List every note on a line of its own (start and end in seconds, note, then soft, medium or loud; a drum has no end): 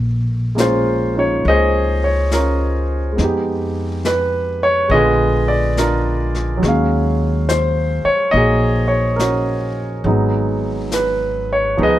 0.00 1.41 A#1 medium
0.55 3.11 G#3 soft
0.55 3.17 A#3 soft
0.55 1.13 C#4 soft
0.55 snare soft
0.55 hi-hat pedal soft
0.60 1.17 F4 medium
0.60 1.19 C5 medium
1.15 2.34 C#4 soft
1.15 3.18 D#4 soft
1.15 2.34 F4 soft
1.19 1.48 C#5 medium
1.44 3.14 C#2 medium
1.44 2.06 D#5 medium
1.44 brush sweep soft
1.49 3.16 G#4 medium
1.49 3.16 C5 medium
2.04 2.31 C#5 medium
2.32 3.16 C#4 soft
2.32 3.16 F4 soft
2.32 3.00 A#4 medium
2.32 snare soft
2.32 hi-hat pedal soft
3.12 4.87 G#3 soft
3.12 4.89 B3 soft
3.18 4.87 F2 medium
3.18 4.92 D#4 soft
3.18 brush sweep soft
3.18 snare soft
3.24 4.93 G4 medium
4.05 4.64 B4 medium
4.05 snare soft
4.05 hi-hat pedal soft
4.63 4.92 C#5 medium
4.88 6.58 A#1 medium
4.88 6.63 D3 soft
4.88 6.60 G#3 soft
4.88 6.62 B3 soft
4.88 5.50 D#5 medium
4.88 brush sweep soft
4.93 5.78 F4 soft
4.93 6.60 G#4 medium
4.93 6.60 B4 medium
5.48 5.78 D5 medium
5.77 6.60 D4 soft
5.77 6.60 F4 soft
5.77 6.45 A#4 medium
5.77 snare soft
5.77 hi-hat pedal soft
6.35 snare soft
6.57 10.03 F#3 soft
6.61 8.02 D#2 medium
6.61 10.04 G#3 soft
6.61 9.19 C#4 soft
6.61 brush sweep soft
6.61 snare soft
6.68 10.09 F5 medium
7.49 8.07 C5 medium
7.49 snare soft
7.49 hi-hat pedal soft
8.05 8.35 C#5 medium
8.05 muted upright bass stroke soft
8.31 10.01 A#1 medium
8.31 10.05 A#3 soft
8.31 10.05 D#4 soft
8.31 8.86 D#5 medium
8.31 brush sweep soft
8.36 9.19 F#4 soft
8.36 10.03 G#4 medium
8.88 9.19 C#5 medium
9.16 10.02 F#4 soft
9.16 9.86 A#4 medium
9.16 snare soft
9.16 hi-hat pedal soft
9.20 10.02 C#4 soft
10.04 11.74 G#1 medium
10.04 11.78 F#3 soft
10.04 11.77 G#3 soft
10.04 11.77 B3 soft
10.04 11.78 D#4 soft
10.04 brush sweep soft
10.92 11.46 B4 medium
10.92 snare soft
10.92 hi-hat pedal medium
11.53 11.78 C#5 medium
11.77 11.99 C#2 medium
11.77 11.99 F3 soft
11.77 11.99 G#3 soft
11.77 11.99 B3 soft
11.77 11.99 D#4 medium
11.77 brush sweep soft
11.82 11.99 G#4 medium
11.82 11.99 B4 medium
11.82 11.99 D#5 medium